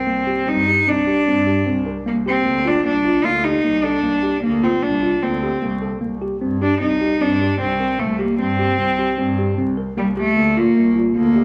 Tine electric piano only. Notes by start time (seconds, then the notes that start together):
0.07 A#3
0.27 G4
0.47 C4
0.67 G4
0.87 C4
1.07 G4
1.27 C4
1.47 G4
1.66 C4
1.86 A#4
2.06 A#3
2.26 G4
2.46 A#3
2.65 F4
2.85 A#3
3.05 F4
3.25 A#3
3.45 G4
3.64 A#3
3.84 A4
4.03 A#3
4.23 G4
4.43 A#3
4.63 F4
4.82 A#3
5.03 F4
5.23 A#3
5.43 G4
5.62 A#3
5.82 A4
6.01 A#3
6.22 G4
6.41 C4
6.61 G4
6.81 C4
7.01 G4
7.21 C4
7.41 G4
7.60 C4
7.80 A#4
7.99 A#3
8.19 G4
8.39 C4
8.59 G4
8.79 C4
8.99 G4
9.18 C4
9.38 G4
9.58 C4
9.77 A#4
9.97 A#3
10.17 G4
10.37 A#3
10.57 F4
10.76 A#3
10.95 F4
11.15 A#3
11.36 G4